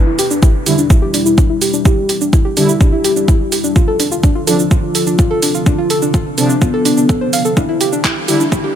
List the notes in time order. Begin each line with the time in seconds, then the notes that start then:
Already playing: E2 B2 G3 D4 E4
0.07 E4
0.19 G4, mid tom, open hi-hat, shaker
0.31 D4, shaker
0.42 E4, kick, shaker
0.66 D3 G3 E4 G4, mid tom, open hi-hat, shaker
0.78 D4, shaker
0.90 E4, kick, shaker
1.02 G4
1.14 D4, open hi-hat, shaker
1.26 E4, shaker
1.38 D4, kick, shaker
1.50 E4
1.61 G4, open hi-hat, shaker
1.73 D4, shaker
1.85 E4 G4, kick, shaker
2.09 G4, mid tom, open hi-hat, shaker
2.21 D4, shaker
2.33 E4, kick, shaker
2.45 G4
2.57 D3 G3 D4 E4 G4, mid tom, open hi-hat, shaker
2.69 E4, shaker
2.81 D4 G4, kick, shaker
2.92 E4
3.04 G4, mid tom, open hi-hat, shaker
3.16 D4, shaker
3.28 E4, kick, shaker
3.52 G4, open hi-hat, shaker
3.64 D4, shaker
3.76 D2 C3 D3 F3 F4, kick, shaker
3.88 A4
4.00 D4, mid tom, open hi-hat, shaker
4.12 F4, shaker
4.23 D4, kick, shaker
4.35 F4
4.47 C3 F3 D4 F4 A4, mid tom, open hi-hat, shaker
4.59 D4, shaker
4.71 F4, kick, shaker
4.95 A4, open hi-hat, shaker
5.07 D4, shaker
5.19 F4, kick, shaker
5.31 A4
5.42 D4, open hi-hat, shaker
5.55 F4, shaker
5.66 D4 F4, kick, shaker
5.78 F4
5.90 A4, mid tom, open hi-hat, shaker
6.02 D4, shaker
6.14 F4, kick, shaker
6.38 C3 F3 C4 D4 A4, mid tom, open hi-hat, shaker
6.50 D4, shaker
6.61 B3 F4, kick, shaker
6.74 A4
6.85 D4, mid tom, open hi-hat, shaker
6.97 D4, shaker
7.09 A4, kick, shaker
7.21 C5
7.33 F5, open hi-hat, shaker
7.45 A4, shaker
7.57 E2 E3 G3 D4 E4, kick, riser, shaker
7.69 E4
7.81 G4, mid tom, open hi-hat, shaker
7.93 D4, shaker
8.04 E4, kick, clap, shaker
8.28 D3 G3 E4 G4, mid tom, open hi-hat, shaker
8.40 D4, shaker
8.52 E4, kick, shaker
8.64 G4